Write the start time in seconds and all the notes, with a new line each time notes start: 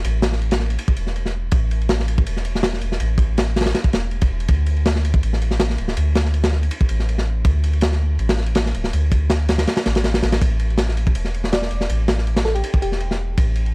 0.04 A1, ride
0.22 snare, ride
0.32 snare
0.41 ride
0.51 snare, ride
0.60 snare
0.70 ride
0.79 ride
0.88 kick
0.97 E1, ride
1.07 snare
1.16 ride
1.26 snare
1.51 A1, kick, ride
1.71 ride
1.81 ride
1.89 snare, ride
2.00 snare
2.08 ride
2.18 kick
2.26 E1, ride
2.37 snare
2.45 ride
2.55 snare
2.63 snare, ride
2.73 snare
2.81 E1, ride
2.92 snare
3.00 A1, ride
3.18 kick, ride
3.38 snare, ride
3.56 snare, ride
3.61 snare, ride
3.66 snare, ride
3.75 snare, ride
3.84 kick
3.93 E1, snare, ride
4.11 ride
4.21 kick, ride
4.30 E1
4.40 ride
4.48 D2, kick, ride
4.66 ride
4.76 ride
4.86 snare, ride
4.96 snare
5.05 ride
5.14 kick
5.23 A1, ride
5.33 snare
5.42 ride
5.51 snare
5.60 snare, ride
5.70 snare
5.78 D1, ride
5.88 snare
5.97 D2, ride
6.15 snare, ride
6.25 snare
6.34 ride
6.44 snare, ride
6.52 snare
6.63 ride
6.71 ride
6.81 kick
6.89 A1, ride
6.99 snare
7.09 ride
7.18 snare
7.45 D2, kick, ride
7.64 ride
7.73 ride
7.81 snare, ride
7.92 snare
8.19 A1, ride
8.29 snare, ride
8.37 snare
8.46 ride
8.55 snare, ride
8.66 snare
8.74 D1, ride
8.84 snare
8.93 D2, ride
9.12 kick, ride
9.30 snare, ride
9.48 snare, ride
9.58 snare, ride
9.67 snare, ride
9.77 snare, ride
9.85 A1, snare, ride
9.95 snare, ride
10.04 snare, ride
10.14 snare, ride
10.23 A1, snare, ride
10.32 snare, ride
10.42 A1, kick, ride
10.59 ride
10.70 ride
10.78 snare, ride
10.89 snare
10.97 ride
11.07 kick
11.15 E1, ride
11.25 snare
11.34 ride
11.44 snare
11.52 D5, snare, ride
11.62 snare
11.71 E1, ride
11.81 snare
11.89 A1, ride
12.08 snare, ride
12.18 snare
12.27 ride
12.36 snare, ride
12.45 A4, snare
12.55 G4, ride
12.64 ride
12.74 kick
12.82 E1 G4, ride
12.92 snare
13.00 ride
13.11 snare
13.38 A1, kick, ride
13.55 ride
13.66 ride